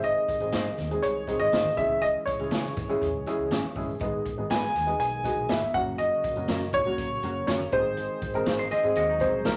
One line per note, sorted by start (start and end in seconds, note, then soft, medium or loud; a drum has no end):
0.00 0.15 G#1 loud
0.00 1.75 C3 medium
0.00 1.75 D#3 medium
0.00 0.28 G#3 medium
0.00 5.70 G#3 medium
0.00 0.28 C4 medium
0.00 0.29 D#4 medium
0.00 0.29 G#4 medium
0.00 5.70 G#4 medium
0.00 1.06 D#5 loud
0.00 closed hi-hat medium
0.00 muted conga soft
0.28 kick medium
0.28 closed hi-hat medium
0.28 muted conga soft
0.40 0.51 G#1 loud
0.40 0.67 G#3 medium
0.40 0.67 C4 medium
0.40 0.67 D#4 medium
0.40 0.67 G#4 medium
0.40 closed hi-hat soft
0.52 0.72 G#2 loud
0.52 0.65 C4 medium
0.52 0.65 D#4 medium
0.52 0.65 G#4 medium
0.52 0.65 C5 loud
0.52 snare loud
0.52 closed hi-hat medium
0.52 high conga medium
0.78 0.97 D#2 medium
0.78 snare soft
0.78 closed hi-hat medium
0.78 muted conga medium
0.91 1.10 G#3 medium
0.91 1.10 C4 medium
0.91 1.11 D#4 medium
0.91 1.11 G#4 medium
0.91 closed hi-hat soft
1.02 1.31 C2 medium
1.02 1.41 C#5 medium
1.02 closed hi-hat loud
1.27 1.54 G#3 medium
1.27 1.54 C4 medium
1.27 1.54 D#4 medium
1.27 1.54 G#4 medium
1.27 kick medium
1.27 closed hi-hat medium
1.27 muted conga soft
1.40 1.50 G#1 medium
1.40 1.78 D#5 loud
1.52 1.78 G#1 medium
1.52 1.65 C4 medium
1.52 1.65 D#4 medium
1.52 1.65 G#4 medium
1.52 1.65 C5 medium
1.52 snare loud
1.52 closed hi-hat medium
1.52 high conga medium
1.65 high conga medium
1.77 2.14 C#2 medium
1.77 3.98 E3 medium
1.77 2.27 G#3 medium
1.77 2.27 C#4 medium
1.77 3.98 C#4 medium
1.77 2.27 E4 medium
1.77 2.27 G#4 medium
1.77 2.03 E5 loud
1.77 kick medium
1.77 closed hi-hat medium
2.02 2.07 D#5 loud
2.02 closed hi-hat medium
2.02 muted conga soft
2.26 3.71 C#5 medium
2.26 kick medium
2.26 closed hi-hat medium
2.26 muted conga soft
2.39 2.49 C#2 medium
2.39 2.66 G#3 medium
2.39 2.66 C#4 medium
2.39 2.66 E4 medium
2.39 2.66 G#4 medium
2.39 closed hi-hat soft
2.51 2.70 C#3 medium
2.51 2.64 C#4 medium
2.51 2.64 E4 medium
2.51 2.64 G#4 medium
2.51 2.64 C#5 medium
2.51 snare loud
2.51 closed hi-hat medium
2.51 high conga medium
2.65 snare soft
2.77 2.95 G#1 medium
2.77 kick medium
2.77 closed hi-hat medium
2.77 muted conga soft
2.77 low conga medium
2.88 3.08 G#3 medium
2.88 3.09 C#4 medium
2.88 3.09 E4 medium
2.88 3.09 G#4 medium
2.88 closed hi-hat soft
3.02 3.11 E2 medium
3.02 kick medium
3.02 closed hi-hat medium
3.14 3.23 C#2 medium
3.26 3.53 G#3 medium
3.26 3.53 C#4 medium
3.26 3.53 E4 medium
3.26 3.53 G#4 loud
3.26 closed hi-hat medium
3.26 muted conga soft
3.39 3.48 C#2 medium
3.51 3.60 G#1 medium
3.51 3.63 C#4 medium
3.51 3.64 E4 medium
3.51 3.64 G#4 medium
3.51 3.64 C#5 medium
3.51 snare loud
3.51 closed hi-hat loud
3.51 high conga medium
3.63 high conga medium
3.76 3.94 G1 medium
3.76 3.89 G#3 medium
3.76 3.89 C#4 medium
3.76 3.89 E4 medium
3.76 3.90 G#4 medium
3.76 kick medium
3.76 open hi-hat soft
4.00 4.19 G#1 medium
4.00 5.73 D#3 medium
4.00 4.20 G#3 medium
4.00 5.72 B3 medium
4.00 4.21 B3 medium
4.00 4.21 D#4 medium
4.00 4.21 G#4 medium
4.00 kick loud
4.00 closed hi-hat medium
4.00 muted conga soft
4.25 kick medium
4.25 closed hi-hat medium
4.25 muted conga soft
4.38 4.47 G#1 medium
4.38 4.64 G#3 medium
4.38 4.64 B3 medium
4.38 4.64 D#4 medium
4.38 4.64 G#4 medium
4.50 4.68 G#2 medium
4.50 4.62 B3 medium
4.50 4.62 D#4 medium
4.50 4.63 G#4 medium
4.50 4.63 B4 loud
4.50 4.98 G#5 loud
4.50 snare loud
4.50 closed hi-hat medium
4.50 high conga medium
4.64 snare soft
4.75 4.93 D#2 medium
4.75 snare soft
4.75 closed hi-hat medium
4.75 muted conga soft
4.87 5.07 G#3 medium
4.87 5.07 B3 medium
4.87 5.07 D#4 medium
4.87 5.07 G#4 medium
4.87 closed hi-hat soft
4.99 5.27 B1 medium
4.99 5.51 G#5 medium
4.99 closed hi-hat medium
5.24 5.51 G#3 medium
5.24 5.51 B3 medium
5.24 5.51 D#4 medium
5.24 5.51 F#4 medium
5.24 kick medium
5.24 closed hi-hat medium
5.37 5.51 B1 medium
5.49 5.67 G#1 medium
5.49 5.61 B3 medium
5.49 5.61 D#4 medium
5.49 5.62 G#4 medium
5.49 5.62 B4 medium
5.49 5.75 E5 medium
5.49 snare loud
5.49 closed hi-hat medium
5.49 high conga medium
5.62 high conga medium
5.74 6.10 F#1 medium
5.74 7.70 C#3 medium
5.74 7.71 F#3 medium
5.74 6.24 F#3 medium
5.74 7.70 A#3 medium
5.74 6.24 A#3 medium
5.74 6.24 C#4 medium
5.74 7.70 F#4 medium
5.74 6.24 F#4 medium
5.74 5.80 F#5 loud
5.74 kick loud
5.74 closed hi-hat medium
5.98 6.75 D#5 medium
5.98 closed hi-hat medium
5.98 muted conga soft
6.24 kick medium
6.24 closed hi-hat medium
6.24 muted conga soft
6.36 6.45 F#1 medium
6.36 6.62 F#3 medium
6.36 6.63 A#3 medium
6.36 6.63 C#4 medium
6.36 6.63 F#4 medium
6.36 closed hi-hat soft
6.48 6.75 F#2 loud
6.48 6.60 C#4 medium
6.48 6.61 F#4 medium
6.48 6.61 A#4 medium
6.48 6.61 C#5 loud
6.48 snare loud
6.48 closed hi-hat medium
6.48 high conga medium
6.61 snare soft
6.73 6.98 C#2 medium
6.73 7.46 C#5 loud
6.73 kick medium
6.73 closed hi-hat medium
6.73 muted conga soft
6.73 low conga medium
6.85 7.05 F#3 medium
6.85 7.06 A#3 medium
6.85 7.06 C#4 medium
6.85 7.06 F#4 medium
6.98 7.16 A#1 medium
6.98 kick medium
6.98 closed hi-hat loud
7.23 7.41 F#1 medium
7.23 7.49 F#3 medium
7.23 7.49 A#3 medium
7.23 7.49 C#4 medium
7.23 7.50 F#4 medium
7.23 closed hi-hat medium
7.23 muted conga soft
7.47 7.66 F#1 medium
7.47 7.60 C#4 medium
7.47 7.60 F#4 medium
7.47 7.60 A#4 medium
7.47 7.73 C#5 medium
7.47 7.60 C#5 loud
7.47 snare loud
7.47 closed hi-hat loud
7.47 high conga medium
7.60 high conga medium
7.72 8.09 G#1 medium
7.72 9.57 D#3 medium
7.72 8.22 G#3 medium
7.72 9.57 G#3 medium
7.72 8.22 C4 medium
7.72 9.57 C4 medium
7.72 8.22 D#4 medium
7.72 7.78 G4 medium
7.72 9.57 G#4 medium
7.72 8.75 C5 loud
7.72 kick loud
7.72 closed hi-hat medium
7.79 8.25 G#4 medium
7.97 closed hi-hat medium
7.97 muted conga soft
8.22 kick medium
8.22 closed hi-hat medium
8.22 muted conga soft
8.34 8.43 G#1 medium
8.34 8.60 G#3 medium
8.34 8.61 C4 medium
8.34 8.61 D#4 medium
8.34 8.61 A#4 medium
8.34 closed hi-hat soft
8.46 8.74 G#1 medium
8.46 8.58 C4 medium
8.46 8.59 D#4 medium
8.46 8.59 G#4 medium
8.46 8.59 C5 medium
8.46 snare loud
8.46 closed hi-hat medium
8.46 high conga medium
8.59 8.71 D#4 medium
8.59 8.71 C5 medium
8.59 snare soft
8.71 8.96 C4 medium
8.71 8.95 G#4 medium
8.71 8.95 D#5 medium
8.71 snare soft
8.71 closed hi-hat medium
8.71 muted conga soft
8.83 8.93 G#2 medium
8.83 9.03 G#3 medium
8.83 9.04 C4 medium
8.83 9.04 D#4 medium
8.83 9.04 G#4 medium
8.83 closed hi-hat medium
8.95 9.23 D#2 loud
8.95 9.08 A#3 medium
8.95 9.08 F#4 medium
8.95 9.22 D#5 medium
8.95 closed hi-hat loud
9.09 9.57 F#3 medium
9.09 9.57 D#4 medium
9.20 9.47 G#3 medium
9.20 9.47 C4 medium
9.20 9.47 D#4 medium
9.20 9.47 G#4 medium
9.20 9.46 C5 medium
9.20 kick medium
9.20 closed hi-hat medium
9.20 muted conga soft
9.33 9.42 C2 medium
9.45 9.57 C2 medium
9.45 9.57 C4 medium
9.45 9.57 D#4 medium
9.45 9.57 G#4 medium
9.45 9.57 A#4 medium
9.45 9.57 C5 medium
9.45 snare loud
9.45 closed hi-hat loud
9.45 high conga medium